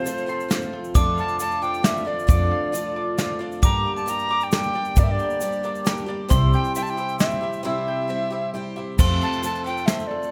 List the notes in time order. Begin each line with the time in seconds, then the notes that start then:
Already playing: F1 F2 F3 A3 C4 A4 C5 F5 C6
0.04 F3 A3 C4 F4 A4 C5, closed hi-hat, shaker
0.18 shaker
0.26 F3 A3 C4 F4 C6, shaker
0.40 shaker
0.48 F3 A3 C4 F4 A4 C5 F5, snare, closed hi-hat, shaker
0.62 shaker
0.73 C5
0.84 shaker
0.94 F1 F2 D3 F3 A3 D4 F4 A4 D5 D6, kick, closed hi-hat, shaker
1.17 F5 A5, shaker
1.28 shaker
1.39 F3 A3 D4 F4 A4 D5 A5, closed hi-hat, shaker
1.51 shaker
1.62 F3 A3 D4 F4 G5 D6, shaker
1.74 shaker
1.83 F3 A3 D4 F4 A4 D5 E5 F5, snare, closed hi-hat, shaker
1.97 shaker
2.05 F3 A3 D4 F4 D5
2.19 shaker
2.27 F1 F2 D3 F3 A3 D4 F4 A4 D5 D6, kick, closed hi-hat, shaker
2.51 F5
2.72 F3 A3 D4 F4 A4 D5 F5, closed hi-hat, shaker
2.96 D6
3.18 F3 A3 D4 F4 A4 D5 F5, snare, closed hi-hat, shaker
3.39 F3 A3 D4 F4 D5
3.52 shaker
3.62 G1 G2 D3 G3 A#3 D4 G4 A#4 D5 A#5 D6, kick, closed hi-hat, shaker
3.85 G5
3.96 A5, shaker
4.06 G3 A#3 D4 G4 A#4 D5 A#5, closed hi-hat, shaker
4.19 shaker
4.29 G3 A#3 D4 G4 D6
4.41 G5, shaker
4.52 G3 A#3 D4 G4 A#4 D5 G5, snare, closed hi-hat, shaker
4.56 G5
4.63 shaker
4.73 G3 A#3 D4 G4 D5
4.85 shaker
4.96 G1 G2 D3 G3 A#3 D4 G4 A#4 D5 D6, kick, closed hi-hat, shaker
5.03 E5
5.11 D5
5.19 G5, shaker
5.30 shaker
5.40 G3 A#3 D4 G4 A#4 C5 D5, closed hi-hat, shaker
5.52 shaker
5.63 G3 A#3 D4 G4 D6, shaker
5.75 shaker
5.84 G3 A#3 D4 G4 A#4 D5 G5 A#5, snare, closed hi-hat, shaker
5.97 shaker
6.06 G3 A#3 D4 G4 D5
6.29 C2 C3 G3 C4 E4 G4 C5 C6 E6, kick, closed hi-hat, shaker
6.33 E5
6.53 G5, shaker
6.64 shaker
6.75 G3 C4 E4 G4 C5 E5 G5, closed hi-hat, shaker
6.83 A5, shaker
6.90 G5
6.97 C4 E4 G4 E6, shaker
7.09 shaker
7.18 G3 C4 E4 G4 C5 E5 G5, snare, closed hi-hat, shaker
7.31 shaker
7.41 C4 E4 G4 E5
7.53 shaker
7.63 C2 C3 G3 C4 E4 G4 C5 E5 E6
7.88 G5
8.08 G3 C4 E4 G4 C5 E5
8.30 C4 E4 G4 E6
8.53 G3 C4 E4 G4 C5 E5 G5
8.76 C4 E4 G4 E5
8.97 F1 F2 C3 F3 A3 C4 A4 C5 A5 C6, kick, crash, shaker
9.21 C5 A5, shaker
9.33 shaker
9.42 F3 A3 C4 A4 C5 A5, closed hi-hat, shaker
9.55 shaker
9.64 F3 A3 C4 A4 G5 A5, shaker
9.77 shaker
9.86 F3 A3 C4 A4 C5 E5, snare, closed hi-hat, shaker
9.90 A4
9.99 shaker
10.07 A4 D5
10.23 shaker